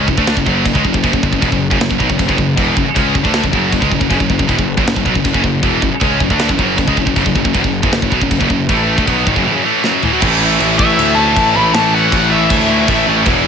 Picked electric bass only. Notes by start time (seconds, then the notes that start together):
0.08 F#1
0.18 D2
0.37 F#1
0.47 F#1
0.66 F#1
0.75 C#2
0.84 F#1
0.94 F#1
1.04 F#1
1.13 F#1
1.23 F#1
1.33 F#1
1.42 E1
1.53 F#1
1.71 F#1
1.80 F#1
1.91 F#1
2.00 B1
2.10 F#1
2.20 F#1
2.29 F#1
2.38 F#1
2.57 E1
2.77 F#1
2.86 muted picked electric bass stroke
2.96 C#2
3.15 F#1
3.25 D2
3.44 F#1
3.53 F#1
3.73 F#1
3.82 C#2
3.92 F#1
4.01 F#1
4.11 F#1
4.20 F#1
4.30 F#1
4.39 F#1
4.49 E1
4.59 F#1
4.78 F#1
4.86 F#1
4.97 F#1
5.06 B1
5.15 F#1
5.25 F#1
5.35 F#1
5.44 F#1
5.63 E1
5.82 F#1
5.91 muted picked electric bass stroke
6.01 C#2
6.20 F#1
6.31 D2
6.49 F#1
6.59 F#1
6.78 F#1
6.88 C#2
6.97 F#1
7.07 F#1
7.17 F#1
7.26 F#1
7.36 F#1
7.45 F#1
7.55 E1
7.64 F#1
7.83 F#1
7.93 F#1
8.03 F#1
8.12 B1
8.22 F#1
8.32 F#1
8.41 F#1
8.50 F#1
8.69 A1
8.98 D2
9.08 B1
9.27 G#1
9.36 F#1
10.22 A1
10.60 A1
10.98 D2
11.37 A1
11.56 A1
11.75 A1
12.12 A1
12.51 D2
12.88 A1
13.07 A1
13.27 E1